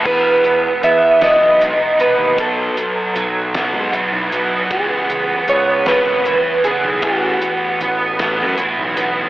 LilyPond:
<<
  \new Staff \with { instrumentName = "Clean electric guitar" } { \time 6/8 \key e \major \tempo 4. = 52 b'4 e''8 dis''4 b'8 | a'2 r4 | gis'4 cis''8 b'4 gis'8 | fis'2 r4 | }
  \new Staff \with { instrumentName = "Overdriven electric guitar" } { \time 6/8 \key e \major b4 b8 b8 dis'8 b8 | fis4 fis8 b8 e'8 b8 | b4 b8 b8 e'8 b8 | b4 b8 b8 e'8 b8 | }
  \new Staff \with { instrumentName = "Distorted electric guitar" } { \clef bass \time 6/8 \key e \major <e, b, e>8 <e, b,>8 r8 <e, b, e>8 <e, b,>8 <e, b,>8 | <b, fis b>8 <b, fis>8 r8 <b, fis b>8 <b, fis>8 <b, fis>8 | <cis e gis>8 <cis e>8 r8 <cis e gis>8 <cis e>8 <cis e>8 | <a, e a>8 <a, e>8 r8 <a, e a>8 <a, e>8 <a, e>8 | }
  \new Staff \with { instrumentName = "Fingered electric bass" } { \clef bass \time 6/8 \key e \major e,4 e,8. b,,8 r8 dis,16 | b,,8 r8 b,,8. gis,16 r16 b,,8. | cis,4 cis,8. gis,,8 r8 b,,16 | a,,8 r8 a,,8. fis,16 r16 b,,8. | }
  \new DrumStaff \with { instrumentName = "Drums" } \drummode { \time 6/8 <cymc bd>8 hh8 hh8 <hh sn>8 hh8 hh8 | <hh bd>8 hh8 hh8 <hh sn>8 hh8 hh8 | <hh bd>8 hh8 hh8 <hh sn>8 hh8 hh8 | <hh bd>8 hh8 hh8 <hh bd sn>8 hh8 hh8 | }
>>